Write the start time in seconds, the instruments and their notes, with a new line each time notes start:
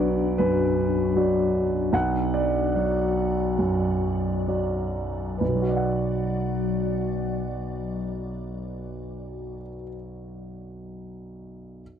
Already playing: grand piano B1 F#3 F#4 B4 C#5 D5, ambient pad F#3 D4 F#4
0.38 grand piano F#2 B4
1.16 grand piano F#3 F#4 D5
1.93 grand piano B1 F#5, ambient pad F#3 F#4 D5
2.34 grand piano D5
2.75 grand piano F#3 F#4 D5
3.59 grand piano F#2
4.48 grand piano F#3 F#4 D5
5.38 grand piano B1 B4, ambient pad F#3 F#4 D5
5.48 grand piano B2
5.55 grand piano F#3
5.62 grand piano F#4
5.69 grand piano D5
5.76 grand piano F#5